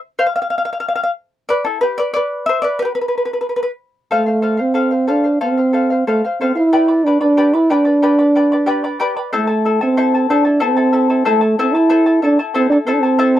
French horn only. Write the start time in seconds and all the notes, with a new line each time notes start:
4.13 A3
4.61 C4
5.10 D4
5.43 C4
6.07 A3
6.41 C4
6.56 E4
7.04 D4
7.21 D4
7.54 E4
7.71 D4
9.35 A3
9.83 C4
10.30 D4
10.63 C4
11.27 A3
11.59 C4
11.74 E4
12.23 D4
12.56 C4
12.70 D4
12.86 C4
12.94 D4
13.00 C4